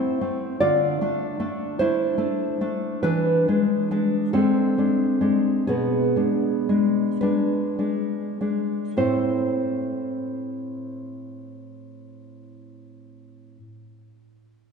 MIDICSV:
0, 0, Header, 1, 2, 480
1, 0, Start_track
1, 0, Key_signature, 0, "minor"
1, 0, Tempo, 1174168
1, 726, Tempo, 1247401
1, 1206, Time_signature, 4, 2, 24, 8
1, 1206, Tempo, 1327434
1, 2166, Tempo, 1534527
1, 2646, Tempo, 1780415
1, 3126, Tempo, 1652893
1, 3606, Tempo, 1583113
1, 4841, End_track
2, 0, Start_track
2, 0, Title_t, "Nylon-string guitar"
2, 0, Program_c, 0, 24
2, 0, Note_on_c, 0, 57, 46
2, 0, Note_on_c, 0, 60, 50
2, 0, Note_on_c, 0, 64, 71
2, 0, Note_on_c, 0, 72, 93
2, 82, Note_off_c, 0, 57, 0
2, 82, Note_off_c, 0, 60, 0
2, 87, Note_on_c, 0, 57, 50
2, 87, Note_on_c, 0, 60, 51
2, 223, Note_off_c, 0, 72, 0
2, 227, Note_off_c, 0, 64, 0
2, 229, Note_off_c, 0, 57, 0
2, 229, Note_off_c, 0, 60, 0
2, 247, Note_on_c, 0, 74, 89
2, 249, Note_on_c, 0, 50, 60
2, 251, Note_on_c, 0, 65, 70
2, 402, Note_off_c, 0, 50, 0
2, 414, Note_on_c, 0, 57, 45
2, 416, Note_on_c, 0, 62, 48
2, 566, Note_off_c, 0, 57, 0
2, 566, Note_off_c, 0, 62, 0
2, 571, Note_on_c, 0, 57, 45
2, 572, Note_on_c, 0, 62, 53
2, 711, Note_off_c, 0, 74, 0
2, 713, Note_off_c, 0, 65, 0
2, 732, Note_off_c, 0, 57, 0
2, 732, Note_on_c, 0, 72, 81
2, 736, Note_off_c, 0, 62, 0
2, 737, Note_on_c, 0, 57, 48
2, 738, Note_on_c, 0, 64, 68
2, 740, Note_on_c, 0, 62, 50
2, 876, Note_off_c, 0, 57, 0
2, 878, Note_off_c, 0, 62, 0
2, 880, Note_on_c, 0, 57, 45
2, 883, Note_on_c, 0, 62, 45
2, 1042, Note_off_c, 0, 57, 0
2, 1044, Note_off_c, 0, 62, 0
2, 1046, Note_on_c, 0, 57, 46
2, 1048, Note_on_c, 0, 62, 48
2, 1193, Note_off_c, 0, 57, 0
2, 1194, Note_off_c, 0, 62, 0
2, 1194, Note_off_c, 0, 72, 0
2, 1197, Note_off_c, 0, 64, 0
2, 1207, Note_on_c, 0, 71, 92
2, 1210, Note_on_c, 0, 52, 67
2, 1213, Note_on_c, 0, 62, 70
2, 1361, Note_off_c, 0, 52, 0
2, 1368, Note_off_c, 0, 62, 0
2, 1372, Note_on_c, 0, 56, 42
2, 1373, Note_on_c, 0, 62, 44
2, 1522, Note_off_c, 0, 56, 0
2, 1524, Note_off_c, 0, 62, 0
2, 1526, Note_on_c, 0, 56, 46
2, 1528, Note_on_c, 0, 62, 54
2, 1663, Note_off_c, 0, 71, 0
2, 1677, Note_off_c, 0, 62, 0
2, 1678, Note_off_c, 0, 56, 0
2, 1679, Note_on_c, 0, 69, 76
2, 1681, Note_on_c, 0, 60, 60
2, 1682, Note_on_c, 0, 56, 45
2, 1682, Note_on_c, 0, 62, 49
2, 1836, Note_off_c, 0, 56, 0
2, 1839, Note_off_c, 0, 62, 0
2, 1840, Note_on_c, 0, 56, 42
2, 1843, Note_on_c, 0, 62, 46
2, 1992, Note_off_c, 0, 56, 0
2, 1996, Note_off_c, 0, 62, 0
2, 1996, Note_on_c, 0, 56, 43
2, 2000, Note_on_c, 0, 62, 42
2, 2152, Note_off_c, 0, 69, 0
2, 2153, Note_off_c, 0, 60, 0
2, 2164, Note_on_c, 0, 68, 73
2, 2168, Note_on_c, 0, 47, 45
2, 2169, Note_on_c, 0, 59, 60
2, 2313, Note_off_c, 0, 56, 0
2, 2316, Note_off_c, 0, 47, 0
2, 2316, Note_off_c, 0, 62, 0
2, 2317, Note_on_c, 0, 56, 40
2, 2319, Note_on_c, 0, 62, 47
2, 2479, Note_off_c, 0, 56, 0
2, 2479, Note_off_c, 0, 62, 0
2, 2483, Note_on_c, 0, 56, 45
2, 2484, Note_on_c, 0, 62, 46
2, 2632, Note_off_c, 0, 68, 0
2, 2635, Note_off_c, 0, 59, 0
2, 2645, Note_off_c, 0, 56, 0
2, 2645, Note_on_c, 0, 71, 68
2, 2646, Note_off_c, 0, 62, 0
2, 2649, Note_on_c, 0, 56, 43
2, 2650, Note_on_c, 0, 62, 48
2, 2797, Note_off_c, 0, 56, 0
2, 2799, Note_off_c, 0, 62, 0
2, 2801, Note_on_c, 0, 56, 38
2, 2802, Note_on_c, 0, 62, 39
2, 2965, Note_off_c, 0, 56, 0
2, 2966, Note_off_c, 0, 62, 0
2, 2968, Note_on_c, 0, 56, 36
2, 2970, Note_on_c, 0, 62, 39
2, 3114, Note_off_c, 0, 71, 0
2, 3115, Note_off_c, 0, 56, 0
2, 3115, Note_off_c, 0, 62, 0
2, 3119, Note_on_c, 0, 45, 54
2, 3120, Note_on_c, 0, 60, 46
2, 3121, Note_on_c, 0, 69, 49
2, 3121, Note_on_c, 0, 72, 60
2, 3123, Note_on_c, 0, 64, 49
2, 4491, Note_off_c, 0, 45, 0
2, 4493, Note_off_c, 0, 60, 0
2, 4493, Note_off_c, 0, 69, 0
2, 4493, Note_off_c, 0, 72, 0
2, 4495, Note_off_c, 0, 64, 0
2, 4841, End_track
0, 0, End_of_file